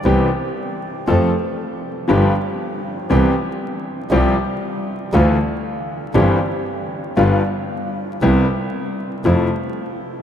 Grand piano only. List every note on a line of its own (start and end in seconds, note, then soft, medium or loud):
0.05 0.27 C2 medium
0.05 0.27 C3 medium
0.05 0.27 E3 medium
0.05 0.27 B3 medium
0.05 0.27 C4 medium
0.05 0.27 G4 medium
1.07 1.29 F2 medium
1.07 1.29 F3 medium
1.07 1.29 A3 medium
1.07 1.29 C4 medium
1.07 1.30 A4 medium
2.08 2.30 G1 medium
2.08 2.30 G2 medium
2.08 2.30 F3 medium
2.08 2.30 B3 medium
2.08 2.31 D4 medium
2.08 2.31 G4 medium
3.10 3.31 C2 medium
3.10 3.31 C3 medium
3.10 3.31 E3 medium
3.10 3.31 B3 medium
3.10 3.31 C4 medium
3.10 3.31 G4 medium
4.12 4.33 C2 medium
4.12 4.33 C3 medium
4.12 4.33 F3 medium
4.12 4.33 G3 medium
4.12 4.33 C4 medium
4.12 4.33 G4 medium
5.14 5.35 D2 medium
5.14 5.35 D3 medium
5.14 5.35 E3 medium
5.14 5.35 A3 medium
5.14 5.35 D4 medium
5.14 5.35 F4 medium
6.14 6.36 G1 medium
6.14 6.36 G2 medium
6.14 6.37 E3 medium
6.14 6.36 G3 medium
6.14 6.37 C4 medium
6.14 6.36 G4 medium
7.17 7.40 G1 medium
7.17 7.39 G2 medium
7.17 7.39 D3 medium
7.17 7.40 G3 medium
7.17 7.39 B3 medium
7.17 7.40 F4 medium
8.22 8.44 C2 medium
8.22 8.44 C3 medium
8.22 8.44 G3 medium
8.22 8.44 B3 medium
8.22 8.44 E4 medium
9.25 9.47 F2 medium
9.25 9.47 C3 medium
9.25 9.47 F3 medium
9.25 9.47 A3 medium
9.25 9.47 E4 medium